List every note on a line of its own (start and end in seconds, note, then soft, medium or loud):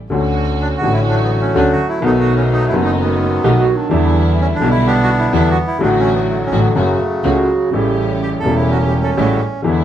0.10 0.80 D2 medium
0.10 0.80 D3 medium
0.10 0.80 A3 medium
0.10 0.80 C#4 medium
0.10 0.80 F#4 medium
0.10 0.81 F#4 medium
0.61 0.68 D4 medium
0.77 0.93 F#4 medium
0.82 1.51 A1 medium
0.82 1.51 A1 loud
0.82 1.51 A2 medium
0.82 1.50 D3 medium
0.82 1.51 A3 medium
0.82 1.51 C#4 medium
0.82 1.51 F#4 medium
0.82 1.52 F#4 medium
0.93 1.00 E4 medium
1.09 1.99 F#3 medium
1.09 1.99 A3 medium
1.09 1.16 D4 medium
1.24 1.31 B3 medium
1.41 1.55 C#4 medium
1.55 1.75 D2 medium
1.55 1.75 D3 medium
1.55 1.75 A3 medium
1.55 1.75 C#4 medium
1.55 1.75 D4 medium
1.55 1.72 D4 medium
1.55 1.75 F#4 medium
1.72 1.88 F#4 loud
1.89 2.04 E4 medium
2.00 2.70 B1 medium
2.00 2.70 B1 loud
2.00 2.69 B2 medium
2.00 2.69 D#3 medium
2.00 2.69 A3 medium
2.00 2.70 A3 medium
2.00 2.70 B3 medium
2.00 2.70 D#4 medium
2.00 2.71 F#4 medium
2.05 2.94 F#3 medium
2.05 2.94 A3 medium
2.05 2.11 D#4 loud
2.20 2.34 F#4 medium
2.37 2.43 C#4 medium
2.53 2.66 D#4 medium
2.68 3.39 D#3 medium
2.68 2.75 E4 medium
2.73 3.40 F#1 medium
2.73 3.40 F#1 loud
2.73 3.40 F#2 medium
2.73 3.40 A3 medium
2.73 3.40 B3 medium
2.73 3.40 D#4 loud
2.73 3.41 F#4 medium
2.85 2.91 D#4 medium
3.00 3.88 D#3 medium
3.00 3.88 F#3 medium
3.00 3.65 B3 medium
3.44 3.63 B1 medium
3.44 3.64 B1 medium
3.44 3.64 B2 medium
3.44 3.63 D#3 medium
3.44 3.63 A3 medium
3.44 3.64 A3 medium
3.44 3.64 B3 medium
3.44 3.64 D#4 medium
3.44 3.64 F#4 medium
3.44 3.51 G4 loud
3.59 3.77 F#4 medium
3.76 4.26 D4 medium
3.89 4.57 E2 loud
3.89 4.58 E2 medium
3.89 4.57 D3 medium
3.89 4.58 E3 medium
3.89 4.58 G3 medium
3.89 4.59 B3 medium
3.89 4.58 D4 medium
3.89 4.58 E4 medium
3.93 4.59 E4 medium
4.41 4.47 C#4 medium
4.55 4.69 D4 loud
4.60 5.29 B1 loud
4.60 5.29 B1 medium
4.60 5.29 B2 medium
4.60 5.28 D3 medium
4.60 5.29 G3 medium
4.60 5.30 B3 medium
4.60 5.29 D4 medium
4.60 5.29 E4 loud
4.64 5.30 E4 medium
4.70 4.86 E4 loud
4.87 5.77 B3 medium
4.87 5.33 D4 medium
4.87 4.94 G4 loud
5.03 5.10 F#4 loud
5.19 5.29 E4 medium
5.30 5.53 E2 loud
5.30 5.53 E2 medium
5.30 5.53 D3 medium
5.30 5.53 E3 medium
5.30 5.53 G3 medium
5.30 5.53 B3 medium
5.30 5.53 D4 medium
5.30 5.50 D4 medium
5.30 5.33 E4 medium
5.30 5.53 E4 medium
5.50 5.57 F#4 loud
5.67 5.81 E4 medium
5.79 6.49 A1 medium
5.79 6.49 A1 loud
5.79 6.49 A2 medium
5.79 6.48 D3 medium
5.79 6.48 F#3 medium
5.79 6.48 A3 medium
5.79 6.49 A3 medium
5.79 6.49 D4 medium
5.79 5.89 D4 medium
5.79 6.49 F#4 loud
5.83 6.73 F#3 medium
5.83 6.28 A3 medium
5.83 6.50 F#4 medium
5.99 6.13 C#4 medium
6.14 6.21 B3 medium
6.30 6.37 A3 medium
6.46 6.60 C#4 medium
6.51 6.72 A1 medium
6.51 6.72 A2 medium
6.51 6.72 D3 medium
6.51 6.72 F#3 medium
6.51 6.72 A3 medium
6.51 6.72 D4 medium
6.51 6.72 F#4 medium
6.51 6.73 F#4 medium
6.62 6.69 B3 medium
6.75 6.96 F#1 medium
6.75 6.96 F#2 medium
6.75 6.96 C#3 medium
6.75 7.70 C#3 medium
6.75 6.96 F#3 medium
6.75 7.70 F#3 medium
6.75 6.96 A3 medium
6.75 7.45 A3 medium
6.75 6.96 C#4 medium
6.75 6.96 F#4 medium
7.23 7.44 C#2 medium
7.23 7.45 C#2 medium
7.23 7.45 C#3 medium
7.23 7.45 F#3 medium
7.23 7.45 A3 medium
7.23 7.45 C#4 medium
7.23 7.45 F#4 medium
7.23 7.74 F#4 medium
7.23 7.45 F#4 medium
7.71 8.41 A1 medium
7.71 8.42 A1 medium
7.71 8.42 A2 medium
7.71 8.41 C#3 medium
7.71 8.42 G3 medium
7.71 8.42 A3 medium
7.71 8.42 C#4 medium
7.71 8.09 G4 medium
7.71 8.42 G4 medium
7.75 8.43 E4 medium
8.23 8.30 G4 medium
8.40 9.13 C#3 medium
8.40 8.55 A4 medium
8.44 9.13 E1 medium
8.44 9.14 E1 medium
8.44 9.14 E2 medium
8.44 9.13 G3 medium
8.44 9.14 A3 medium
8.44 9.14 C#4 medium
8.44 9.15 E4 medium
8.44 9.14 G4 medium
8.55 8.71 E4 medium
8.70 9.61 C#4 medium
8.70 8.78 F#4 medium
8.87 8.94 G4 medium
9.04 9.10 A4 medium
9.17 9.37 A1 medium
9.17 9.38 A2 medium
9.17 9.37 C#3 medium
9.17 9.37 G3 medium
9.17 9.37 A3 medium
9.17 9.37 C#4 medium
9.17 9.37 E4 medium
9.17 9.41 F#4 medium
9.17 9.37 G4 medium
9.62 9.84 E2 medium
9.62 9.84 D3 medium
9.62 9.84 E3 medium
9.62 9.84 G#3 medium
9.62 9.84 B3 medium
9.62 9.84 D4 medium
9.62 9.84 E4 medium
9.67 9.84 E4 medium